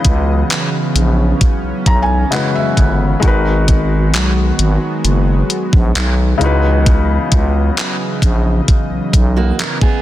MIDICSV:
0, 0, Header, 1, 6, 480
1, 0, Start_track
1, 0, Tempo, 909091
1, 1704, Time_signature, 4, 2, 24, 8
1, 5290, End_track
2, 0, Start_track
2, 0, Title_t, "Felt piano"
2, 0, Program_c, 0, 0
2, 0, Control_c, 0, 64, 127
2, 0, Note_on_c, 0, 49, 71
2, 0, Note_on_c, 0, 56, 69
2, 0, Note_on_c, 0, 63, 67
2, 0, Note_on_c, 0, 64, 69
2, 0, Note_on_c, 0, 66, 67
2, 0, Note_on_c, 0, 71, 86
2, 989, Note_on_c, 0, 82, 69
2, 1061, Note_off_c, 0, 82, 0
2, 1069, Note_on_c, 0, 80, 65
2, 1195, Note_off_c, 0, 49, 0
2, 1199, Note_off_c, 0, 56, 0
2, 1203, Note_off_c, 0, 63, 0
2, 1207, Note_off_c, 0, 64, 0
2, 1211, Note_off_c, 0, 66, 0
2, 1215, Note_off_c, 0, 71, 0
2, 1216, Note_off_c, 0, 80, 0
2, 1218, Note_on_c, 0, 49, 54
2, 1223, Note_on_c, 0, 56, 49
2, 1227, Note_on_c, 0, 75, 48
2, 1229, Note_on_c, 0, 78, 67
2, 1231, Note_on_c, 0, 64, 50
2, 1234, Note_on_c, 0, 66, 51
2, 1238, Note_on_c, 0, 71, 62
2, 1338, Note_off_c, 0, 78, 0
2, 1349, Note_on_c, 0, 76, 67
2, 1680, Note_off_c, 0, 56, 0
2, 1685, Note_off_c, 0, 76, 0
2, 1688, Note_on_c, 0, 56, 70
2, 1698, Note_on_c, 0, 63, 70
2, 1700, Note_off_c, 0, 66, 0
2, 1701, Note_off_c, 0, 49, 0
2, 1705, Note_off_c, 0, 75, 0
2, 1707, Note_off_c, 0, 64, 0
2, 1708, Note_on_c, 0, 66, 68
2, 1710, Control_c, 0, 64, 0
2, 1711, Note_off_c, 0, 71, 0
2, 1719, Note_on_c, 0, 70, 63
2, 1729, Note_on_c, 0, 71, 82
2, 1811, Control_c, 0, 64, 127
2, 3355, Note_off_c, 0, 56, 0
2, 3360, Note_off_c, 0, 63, 0
2, 3365, Note_off_c, 0, 66, 0
2, 3367, Note_on_c, 0, 49, 77
2, 3370, Note_off_c, 0, 70, 0
2, 3376, Note_off_c, 0, 71, 0
2, 3376, Note_on_c, 0, 56, 66
2, 3384, Note_on_c, 0, 63, 68
2, 3391, Control_c, 0, 64, 0
2, 3392, Note_on_c, 0, 64, 66
2, 3400, Note_on_c, 0, 66, 69
2, 3408, Note_on_c, 0, 71, 83
2, 3483, Control_c, 0, 64, 127
2, 5275, Note_off_c, 0, 49, 0
2, 5279, Note_off_c, 0, 56, 0
2, 5283, Note_off_c, 0, 63, 0
2, 5287, Note_off_c, 0, 64, 0
2, 5290, Note_off_c, 0, 66, 0
2, 5290, Note_off_c, 0, 71, 0
2, 5290, End_track
3, 0, Start_track
3, 0, Title_t, "Steel-string acoustic guitar"
3, 0, Program_c, 1, 25
3, 4944, Note_on_c, 1, 66, 71
3, 4948, Note_on_c, 1, 58, 63
3, 5058, Note_off_c, 1, 66, 0
3, 5060, Note_off_c, 1, 58, 0
3, 5064, Note_on_c, 1, 70, 80
3, 5068, Note_on_c, 1, 61, 70
3, 5178, Note_off_c, 1, 70, 0
3, 5180, Note_off_c, 1, 61, 0
3, 5185, Note_on_c, 1, 68, 78
3, 5188, Note_on_c, 1, 59, 62
3, 5290, Note_off_c, 1, 59, 0
3, 5290, Note_off_c, 1, 68, 0
3, 5290, End_track
4, 0, Start_track
4, 0, Title_t, "Analog synth pad"
4, 0, Program_c, 2, 89
4, 0, Note_on_c, 2, 49, 74
4, 0, Note_on_c, 2, 52, 65
4, 0, Note_on_c, 2, 54, 64
4, 0, Note_on_c, 2, 59, 67
4, 0, Note_on_c, 2, 75, 82
4, 494, Note_off_c, 2, 75, 0
4, 503, Note_on_c, 2, 61, 85
4, 1684, Note_off_c, 2, 49, 0
4, 1684, Note_off_c, 2, 52, 0
4, 1692, Note_off_c, 2, 61, 0
4, 1706, Note_on_c, 2, 51, 70
4, 1706, Note_on_c, 2, 56, 66
4, 1706, Note_on_c, 2, 66, 83
4, 3368, Note_off_c, 2, 51, 0
4, 3368, Note_off_c, 2, 56, 0
4, 3368, Note_off_c, 2, 66, 0
4, 3385, Note_on_c, 2, 75, 82
4, 3386, Note_on_c, 2, 49, 77
4, 3386, Note_on_c, 2, 52, 67
4, 5290, Note_off_c, 2, 49, 0
4, 5290, Note_off_c, 2, 52, 0
4, 5290, Note_off_c, 2, 54, 0
4, 5290, Note_off_c, 2, 59, 0
4, 5290, Note_off_c, 2, 75, 0
4, 5290, End_track
5, 0, Start_track
5, 0, Title_t, "FM bass"
5, 0, Program_c, 3, 39
5, 26, Note_on_c, 3, 37, 95
5, 229, Note_off_c, 3, 37, 0
5, 504, Note_on_c, 3, 34, 87
5, 709, Note_off_c, 3, 34, 0
5, 865, Note_on_c, 3, 35, 45
5, 912, Note_off_c, 3, 35, 0
5, 983, Note_on_c, 3, 35, 94
5, 1188, Note_off_c, 3, 35, 0
5, 1464, Note_on_c, 3, 31, 88
5, 1668, Note_off_c, 3, 31, 0
5, 1704, Note_on_c, 3, 32, 111
5, 2183, Note_on_c, 3, 35, 87
5, 2191, Note_off_c, 3, 32, 0
5, 2388, Note_off_c, 3, 35, 0
5, 2424, Note_on_c, 3, 32, 91
5, 2526, Note_off_c, 3, 32, 0
5, 2664, Note_on_c, 3, 30, 90
5, 2869, Note_off_c, 3, 30, 0
5, 3026, Note_on_c, 3, 34, 93
5, 3127, Note_off_c, 3, 34, 0
5, 3145, Note_on_c, 3, 35, 94
5, 3349, Note_off_c, 3, 35, 0
5, 3384, Note_on_c, 3, 37, 94
5, 3793, Note_off_c, 3, 37, 0
5, 3865, Note_on_c, 3, 37, 89
5, 4069, Note_off_c, 3, 37, 0
5, 4341, Note_on_c, 3, 34, 98
5, 4547, Note_off_c, 3, 34, 0
5, 4705, Note_on_c, 3, 35, 47
5, 4753, Note_off_c, 3, 35, 0
5, 4823, Note_on_c, 3, 35, 92
5, 5028, Note_off_c, 3, 35, 0
5, 5290, End_track
6, 0, Start_track
6, 0, Title_t, "Drums"
6, 24, Note_on_c, 9, 42, 72
6, 25, Note_on_c, 9, 36, 83
6, 77, Note_off_c, 9, 42, 0
6, 78, Note_off_c, 9, 36, 0
6, 265, Note_on_c, 9, 42, 77
6, 272, Note_on_c, 9, 39, 112
6, 317, Note_off_c, 9, 42, 0
6, 325, Note_off_c, 9, 39, 0
6, 505, Note_on_c, 9, 42, 71
6, 558, Note_off_c, 9, 42, 0
6, 744, Note_on_c, 9, 42, 58
6, 745, Note_on_c, 9, 36, 77
6, 797, Note_off_c, 9, 42, 0
6, 798, Note_off_c, 9, 36, 0
6, 983, Note_on_c, 9, 36, 84
6, 984, Note_on_c, 9, 42, 59
6, 1036, Note_off_c, 9, 36, 0
6, 1036, Note_off_c, 9, 42, 0
6, 1224, Note_on_c, 9, 42, 65
6, 1231, Note_on_c, 9, 39, 110
6, 1277, Note_off_c, 9, 42, 0
6, 1284, Note_off_c, 9, 39, 0
6, 1463, Note_on_c, 9, 36, 81
6, 1465, Note_on_c, 9, 42, 58
6, 1516, Note_off_c, 9, 36, 0
6, 1517, Note_off_c, 9, 42, 0
6, 1703, Note_on_c, 9, 42, 70
6, 1704, Note_on_c, 9, 36, 121
6, 1756, Note_off_c, 9, 42, 0
6, 1757, Note_off_c, 9, 36, 0
6, 1943, Note_on_c, 9, 42, 77
6, 1945, Note_on_c, 9, 36, 83
6, 1996, Note_off_c, 9, 42, 0
6, 1997, Note_off_c, 9, 36, 0
6, 2184, Note_on_c, 9, 42, 72
6, 2191, Note_on_c, 9, 39, 115
6, 2237, Note_off_c, 9, 42, 0
6, 2244, Note_off_c, 9, 39, 0
6, 2424, Note_on_c, 9, 42, 75
6, 2476, Note_off_c, 9, 42, 0
6, 2664, Note_on_c, 9, 42, 62
6, 2717, Note_off_c, 9, 42, 0
6, 2904, Note_on_c, 9, 42, 58
6, 2956, Note_off_c, 9, 42, 0
6, 3025, Note_on_c, 9, 36, 88
6, 3078, Note_off_c, 9, 36, 0
6, 3144, Note_on_c, 9, 42, 68
6, 3150, Note_on_c, 9, 39, 109
6, 3196, Note_off_c, 9, 42, 0
6, 3203, Note_off_c, 9, 39, 0
6, 3385, Note_on_c, 9, 42, 63
6, 3437, Note_off_c, 9, 42, 0
6, 3624, Note_on_c, 9, 36, 119
6, 3624, Note_on_c, 9, 42, 67
6, 3677, Note_off_c, 9, 36, 0
6, 3677, Note_off_c, 9, 42, 0
6, 3863, Note_on_c, 9, 42, 71
6, 3864, Note_on_c, 9, 36, 85
6, 3916, Note_off_c, 9, 42, 0
6, 3917, Note_off_c, 9, 36, 0
6, 4104, Note_on_c, 9, 42, 76
6, 4111, Note_on_c, 9, 39, 121
6, 4157, Note_off_c, 9, 42, 0
6, 4164, Note_off_c, 9, 39, 0
6, 4341, Note_on_c, 9, 36, 93
6, 4344, Note_on_c, 9, 42, 73
6, 4393, Note_off_c, 9, 36, 0
6, 4397, Note_off_c, 9, 42, 0
6, 4584, Note_on_c, 9, 36, 74
6, 4584, Note_on_c, 9, 42, 60
6, 4637, Note_off_c, 9, 36, 0
6, 4637, Note_off_c, 9, 42, 0
6, 4823, Note_on_c, 9, 36, 81
6, 4824, Note_on_c, 9, 42, 59
6, 4875, Note_off_c, 9, 36, 0
6, 4877, Note_off_c, 9, 42, 0
6, 5064, Note_on_c, 9, 42, 66
6, 5071, Note_on_c, 9, 39, 109
6, 5117, Note_off_c, 9, 42, 0
6, 5124, Note_off_c, 9, 39, 0
6, 5182, Note_on_c, 9, 36, 100
6, 5235, Note_off_c, 9, 36, 0
6, 5290, End_track
0, 0, End_of_file